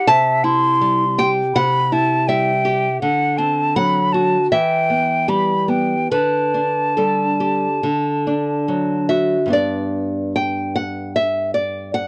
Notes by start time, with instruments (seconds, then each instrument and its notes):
Already playing: flute F#5
0.07 nylon-string guitar C3 A5, flute E5
0.44 nylon-string guitar E4, flute C6
0.81 nylon-string guitar G3
1.18 nylon-string guitar G4 G5
1.55 nylon-string guitar C3 F#5, flute B5
1.92 nylon-string guitar E4, flute A5
2.28 nylon-string guitar G3 E5, flute G5
2.65 nylon-string guitar G4
3.01 nylon-string guitar D3, flute F#5
3.38 nylon-string guitar C4, flute A5
3.76 nylon-string guitar F#3 F#5, flute B5
4.13 nylon-string guitar F#4, flute A5
4.51 nylon-string guitar E3 E5, flute G5
4.90 nylon-string guitar B3
5.28 nylon-string guitar G3 G4, flute B5
5.68 nylon-string guitar B3, flute G5
6.11 nylon-string guitar D3 B4, flute A5
6.54 nylon-string guitar D4
6.97 nylon-string guitar G3 A4
7.40 nylon-string guitar G4
7.83 nylon-string guitar D3
8.27 nylon-string guitar D4
8.68 nylon-string guitar F#3
9.09 nylon-string guitar F#4 E5
9.46 nylon-string guitar G2 B3
9.50 nylon-string guitar D4 D5
10.36 nylon-string guitar G5
10.76 nylon-string guitar F#5
11.16 nylon-string guitar E5
11.54 nylon-string guitar D5
11.94 nylon-string guitar F#5